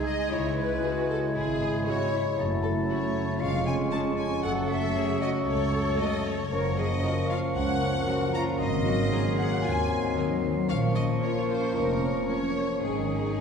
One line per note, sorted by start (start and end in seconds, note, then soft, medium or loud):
0.00 0.33 C3 medium
0.00 0.56 G#3 medium
0.00 2.34 G#3 medium
0.00 2.39 G#3 medium
0.00 0.33 C4 soft
0.00 0.31 D#4 medium
0.00 0.33 D#4 medium
0.00 0.30 G#4 medium
0.00 0.96 G#4 medium
0.00 2.34 G#5 medium
0.05 0.31 D#5 medium
0.05 0.33 D#5 medium
0.05 0.31 D#5 medium
0.18 0.33 D#6 medium
0.31 0.74 C#2 medium
0.31 2.40 C#3 medium
0.31 0.83 E4 medium
0.31 3.42 E4 medium
0.31 3.37 E4 medium
0.31 0.37 C#5 medium
0.31 0.58 C#5 medium
0.44 1.85 C#4 soft
0.56 1.98 G#3 medium
0.56 1.07 B4 medium
0.56 1.08 B4 medium
0.71 1.72 E4 soft
0.83 0.92 G#3 medium
0.83 0.92 E4 medium
0.83 1.33 F#4 medium
0.83 0.91 G#4 medium
0.83 1.59 C#5 medium
0.97 1.47 G#4 medium
1.08 1.14 A4 medium
1.08 1.17 A4 medium
1.08 1.34 E5 medium
1.23 3.26 C#6 medium
1.35 1.78 G#1 medium
1.35 1.43 E4 medium
1.35 1.85 G#4 medium
1.35 1.86 G#4 medium
1.35 3.13 E5 medium
1.48 2.40 G#4 medium
1.61 1.69 G#4 medium
1.61 2.88 C#5 soft
1.73 2.75 E4 soft
1.86 1.95 G#3 medium
1.86 2.11 C#4 soft
1.86 1.96 E4 medium
1.86 2.12 F#4 medium
1.86 1.94 G#4 medium
1.86 2.37 C#5 medium
1.99 2.23 G#3 soft
2.13 2.21 E4 medium
2.24 2.40 G#3 soft
2.37 2.81 F#1 medium
2.37 3.42 F#2 medium
2.37 3.41 F#3 medium
2.37 3.40 A3 medium
2.37 2.45 D#4 medium
2.37 3.42 A5 medium
2.50 3.42 C#3 soft
2.63 3.43 A3 medium
2.63 4.41 C#4 medium
2.63 2.71 A4 medium
2.63 2.69 A4 medium
2.76 3.43 E4 soft
2.88 2.98 A3 medium
2.88 2.99 E4 medium
2.88 2.98 F#4 medium
2.88 3.39 C#5 medium
2.88 3.90 C#5 medium
3.01 3.42 A4 medium
3.14 3.42 E5 medium
3.27 4.30 C#6 medium
3.39 3.84 F1 medium
3.39 4.46 F2 medium
3.39 4.42 G#3 medium
3.39 4.46 G#3 medium
3.39 6.34 C#4 medium
3.39 4.46 F4 medium
3.39 3.66 F5 medium
3.39 3.68 F5 medium
3.39 6.35 C#6 medium
3.52 4.46 F3 soft
3.65 4.46 G#3 soft
3.65 3.91 G#5 medium
3.65 3.74 G#5 medium
3.79 4.82 C#4 soft
3.91 4.01 G#3 medium
3.91 4.01 C#4 medium
3.91 4.01 G#4 medium
3.91 4.16 C#5 medium
3.91 3.97 A5 medium
3.91 4.00 A5 medium
4.05 4.46 G#4 soft
4.17 4.95 C#5 medium
4.17 4.44 G#5 medium
4.17 4.43 G#5 medium
4.42 4.87 F#1 medium
4.42 6.50 F#2 medium
4.42 6.35 F#3 medium
4.42 6.34 A3 medium
4.42 6.36 A4 medium
4.42 4.95 A4 medium
4.42 4.70 F#5 medium
4.42 4.51 F#5 medium
4.57 5.99 C#3 soft
4.68 6.11 A3 medium
4.68 5.20 E5 medium
4.84 5.85 C#4 medium
4.96 5.05 F#3 medium
4.96 5.05 C#4 medium
4.96 5.22 G#4 medium
4.96 5.04 A4 medium
4.96 5.21 C#5 medium
5.09 5.59 A4 medium
5.20 5.48 F#4 medium
5.20 5.46 C#5 medium
5.20 5.26 D#5 medium
5.20 5.29 D#5 medium
5.46 5.91 C#2 medium
5.46 6.50 A4 medium
5.46 5.98 C#5 medium
5.46 5.73 C#5 medium
5.46 5.98 C#5 medium
5.74 7.28 C#5 medium
5.86 6.90 C#4 medium
5.99 6.24 C#3 medium
5.99 6.09 F#3 medium
5.99 6.09 C#4 medium
5.99 6.08 A4 medium
5.99 6.05 D#5 medium
5.99 6.26 D#5 medium
6.12 6.37 A3 soft
6.24 6.54 C#3 soft
6.24 6.78 C#5 medium
6.24 6.77 C#5 medium
6.39 6.54 A3 medium
6.51 6.94 F#1 medium
6.51 8.61 F#2 medium
6.51 8.55 F3 medium
6.51 10.65 A#3 medium
6.51 9.60 C#4 medium
6.51 6.77 A#4 medium
6.51 10.66 A#4 medium
6.51 8.55 C#6 medium
6.64 8.05 C#3 soft
6.77 8.18 F3 medium
6.77 6.85 G#4 medium
6.77 7.29 D#5 medium
6.77 7.30 D#5 medium
6.91 7.92 C#4 medium
7.03 7.12 F3 medium
7.03 7.13 C#4 medium
7.03 7.11 F#4 medium
7.03 7.79 A#4 medium
7.03 7.11 A#4 medium
7.16 7.66 F4 medium
7.27 7.38 F4 medium
7.27 7.54 C#5 medium
7.27 7.53 F5 medium
7.27 7.38 F5 medium
7.42 9.49 A#5 medium
7.54 7.98 C#2 medium
7.54 8.06 C#4 medium
7.54 8.61 C#5 medium
7.54 8.34 F#5 medium
7.54 8.31 F#5 loud
7.68 8.61 F4 medium
7.81 9.10 A#4 medium
7.93 8.61 C#4 medium
8.06 8.31 C#3 medium
8.06 8.16 F3 medium
8.06 8.15 C#4 medium
8.06 8.33 F#4 medium
8.06 8.16 A#4 medium
8.19 8.45 F3 medium
8.32 8.61 C#3 medium
8.32 8.59 F4 medium
8.32 8.61 A#5 medium
8.32 8.42 A#5 medium
8.46 8.61 F3 medium
8.59 9.03 G#1 medium
8.59 10.71 G#2 medium
8.59 10.71 F#3 medium
8.59 8.67 D#4 medium
8.59 9.36 D#5 medium
8.59 9.36 D#5 loud
8.59 10.65 C6 medium
8.72 10.15 D#3 medium
8.85 10.29 F#3 medium
8.85 8.93 F#4 medium
8.99 10.03 C4 medium
9.11 9.20 F#3 medium
9.11 9.19 C4 medium
9.11 9.63 G#4 medium
9.11 9.89 A#4 medium
9.11 9.20 A#4 medium
9.24 9.76 F#4 medium
9.37 9.62 C5 medium
9.37 9.63 F#5 medium
9.37 9.64 F#5 medium
9.50 11.60 A#5 medium
9.62 10.08 D#2 medium
9.62 10.69 C4 medium
9.62 9.72 F4 medium
9.62 10.71 C5 medium
9.62 10.15 G#5 medium
9.62 10.17 G#5 medium
9.77 10.71 F#4 medium
9.90 10.68 D#4 medium
9.90 11.20 A#4 medium
10.04 10.71 C4 medium
10.16 10.41 D#3 medium
10.16 10.26 F#3 medium
10.16 10.25 C4 medium
10.16 10.25 A#4 medium
10.30 10.55 F#3 medium
10.42 10.71 D#3 medium
10.56 10.71 F#3 soft
10.67 11.13 A#1 medium
10.67 12.86 A#2 medium
10.67 12.84 F3 medium
10.67 12.79 A#3 medium
10.67 13.41 C#4 medium
10.67 11.21 C#4 medium
10.67 12.80 A#4 medium
10.67 10.93 F5 medium
10.67 10.77 F5 loud
10.67 13.41 C#6 medium
10.82 12.27 A#3 soft
10.95 12.41 F3 medium
10.95 11.04 D#5 medium
10.95 11.02 D#5 medium
11.08 12.14 C#4 medium
11.21 11.29 F3 medium
11.21 11.30 C#4 medium
11.21 11.74 F4 medium
11.21 12.01 A#4 medium
11.21 11.31 A#4 medium
11.21 11.28 C#5 medium
11.21 11.48 C#5 medium
11.35 11.88 F4 medium
11.48 11.75 C5 medium
11.48 11.73 C#5 medium
11.61 12.86 A#5 medium
11.75 12.20 F1 medium
11.75 12.02 D#4 medium
11.75 12.29 A#4 medium
11.75 13.41 C#5 medium
11.89 12.86 F4 medium
12.02 12.82 C#4 medium
12.02 12.86 A#4 soft
12.16 13.10 C#4 soft
12.28 12.37 F3 soft
12.28 12.54 A#3 soft
12.28 12.36 C#4 medium
12.28 12.38 A#4 medium
12.28 12.83 C#5 medium
12.28 12.87 C#5 medium
12.42 12.69 F3 soft
12.55 12.86 A#3 soft
12.70 12.86 F3 soft
12.82 13.30 G#1 medium
12.82 13.41 G#2 medium
12.82 13.33 D#3 medium
12.82 13.41 G#3 medium
12.82 13.41 D#4 medium
12.82 13.41 G#4 medium
12.98 13.41 D#3 soft
13.12 13.41 C#4 soft
13.26 13.41 D#4 soft